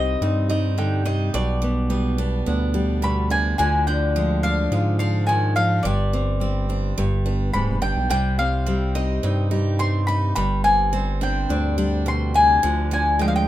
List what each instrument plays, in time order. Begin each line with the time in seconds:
Already playing: analog synth bass C2, nylon-string guitar C3 G3 C4 D#4 G4, steel-string acoustic guitar G3 C4, mandolin D#5
0.22 analog synth bass G2, steel-string acoustic guitar C4, nylon-string guitar D#4
0.50 nylon-string guitar G3, steel-string acoustic guitar D#4, mandolin D#5
0.78 nylon-string guitar D3, steel-string acoustic guitar G3, mandolin G5
1.05 nylon-string guitar C3, steel-string acoustic guitar D#4, mandolin D#5
1.34 analog synth bass B1, nylon-string guitar B2, steel-string acoustic guitar G3, mandolin D5
1.62 steel-string acoustic guitar G3, nylon-string guitar B3
1.90 nylon-string guitar G3, steel-string acoustic guitar B3
2.18 nylon-string guitar B3, steel-string acoustic guitar D4
2.46 analog synth bass D2, steel-string acoustic guitar B3, nylon-string guitar D4
2.74 nylon-string guitar G3, steel-string acoustic guitar D4
3.02 nylon-string guitar B2, steel-string acoustic guitar G3, mandolin B5
3.30 nylon-string guitar C3, steel-string acoustic guitar D4, mandolin G#5
3.58 analog synth bass D2, nylon-string guitar D3, steel-string acoustic guitar F3, mandolin G#5
3.87 steel-string acoustic guitar F3, nylon-string guitar D4, mandolin G5
4.16 nylon-string guitar F3, steel-string acoustic guitar G#3
4.43 steel-string acoustic guitar D4, nylon-string guitar D4, mandolin F5
4.72 analog synth bass G#2, steel-string acoustic guitar G#3, nylon-string guitar F4
4.99 nylon-string guitar F3, steel-string acoustic guitar D4, mandolin F5
5.27 nylon-string guitar D#3, steel-string acoustic guitar F3, mandolin G#5
5.56 nylon-string guitar F3, steel-string acoustic guitar D4, mandolin F5
5.83 analog synth bass G1, nylon-string guitar G2, steel-string acoustic guitar G3, mandolin D5
6.13 steel-string acoustic guitar G3, nylon-string guitar C4
6.40 nylon-string guitar G3, steel-string acoustic guitar C4
6.69 nylon-string guitar C4, steel-string acoustic guitar D4
6.98 analog synth bass G1, nylon-string guitar G2, steel-string acoustic guitar G3
7.26 nylon-string guitar B3, steel-string acoustic guitar D4
7.53 analog synth bass D1, nylon-string guitar G#2, steel-string acoustic guitar G3, mandolin B5
7.70 analog synth bass F1
7.81 analog synth bass G1, nylon-string guitar B2, steel-string acoustic guitar D4, mandolin G5
7.97 analog synth bass B1
8.10 analog synth bass C2, nylon-string guitar C3, steel-string acoustic guitar G3, mandolin G5
8.39 steel-string acoustic guitar G3, nylon-string guitar C4, mandolin F5
8.66 nylon-string guitar G3, steel-string acoustic guitar C4
8.95 nylon-string guitar C4, steel-string acoustic guitar D#4, mandolin D#5
9.23 analog synth bass G2, steel-string acoustic guitar C4, nylon-string guitar D#4
9.51 nylon-string guitar G3, steel-string acoustic guitar D#4
9.79 steel-string acoustic guitar G3, nylon-string guitar C4, mandolin C6
10.07 steel-string acoustic guitar D#4, nylon-string guitar D#4, mandolin B5
10.35 analog synth bass G1, nylon-string guitar G2, steel-string acoustic guitar G3, mandolin B5
10.64 steel-string acoustic guitar G3, nylon-string guitar C4, mandolin G#5
10.93 nylon-string guitar G3, steel-string acoustic guitar C4
11.21 nylon-string guitar C4, steel-string acoustic guitar D4, mandolin G5
11.49 analog synth bass D2, steel-string acoustic guitar C4, nylon-string guitar D4
11.78 nylon-string guitar G3, steel-string acoustic guitar D4
12.06 nylon-string guitar B2, steel-string acoustic guitar G3, mandolin C6
12.34 nylon-string guitar C3, steel-string acoustic guitar D4, mandolin G#5
12.63 analog synth bass D2, nylon-string guitar D3, steel-string acoustic guitar F3
12.91 steel-string acoustic guitar F3, nylon-string guitar D4, mandolin G#5
13.19 nylon-string guitar F3, steel-string acoustic guitar G#3, mandolin G5
13.28 mandolin F5
13.36 mandolin G5